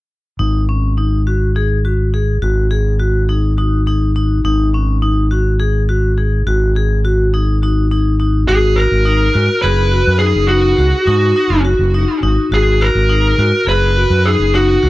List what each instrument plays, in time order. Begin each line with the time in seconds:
0.39 fingered electric bass G#1, vibraphone D#4
0.69 vibraphone C#4
0.98 vibraphone D#4
1.27 vibraphone F#4
1.56 vibraphone G#4
1.85 vibraphone F#4
2.14 vibraphone G#4
2.42 fingered electric bass G#1, vibraphone F#4
2.71 vibraphone G#4
3.00 vibraphone F#4
3.29 vibraphone D#4
3.58 vibraphone D#4
3.87 vibraphone D#4
4.16 vibraphone D#4
4.44 fingered electric bass G#1, vibraphone D#4
4.74 vibraphone C#4
5.02 vibraphone D#4
5.31 vibraphone F#4
5.60 vibraphone G#4
5.89 vibraphone F#4
6.18 vibraphone G#4
6.46 fingered electric bass G#1, vibraphone F#4
6.76 vibraphone G#4
7.05 vibraphone F#4
7.34 vibraphone D#4
7.63 vibraphone D#4
7.91 vibraphone D#4
8.20 vibraphone D#4
8.48 fingered electric bass G#1, vibraphone F#4, lead electric guitar G#4
8.76 vibraphone F#4, lead electric guitar A#4
8.92 fingered electric bass G#1
9.05 vibraphone D#4
9.34 fingered electric bass G#2, vibraphone F#4
9.62 fingered electric bass F#1, vibraphone G#4, lead electric guitar B4
9.92 vibraphone F#4
10.07 fingered electric bass F#2
10.19 vibraphone D#4, lead electric guitar G#4
10.36 fingered electric bass F#1
10.48 vibraphone D#4, lead electric guitar F#4
10.78 fingered electric bass C#2, vibraphone F#4
11.07 fingered electric bass G#2, vibraphone D#4
11.36 vibraphone D#4
11.50 fingered electric bass F#1
11.65 vibraphone F#4
11.79 fingered electric bass F#1
11.94 vibraphone D#4
12.23 fingered electric bass G#1, vibraphone D#4
12.51 fingered electric bass G#1, vibraphone F#4, lead electric guitar G#4
12.81 vibraphone F#4, lead electric guitar A#4
12.95 fingered electric bass G#1
13.09 vibraphone D#4
13.38 fingered electric bass G#2, vibraphone F#4
13.67 fingered electric bass F#1, vibraphone G#4, lead electric guitar B4
13.96 vibraphone F#4
14.10 fingered electric bass F#2
14.26 vibraphone D#4, lead electric guitar G#4
14.39 fingered electric bass F#1
14.54 vibraphone D#4, lead electric guitar F#4
14.83 fingered electric bass C#2, vibraphone F#4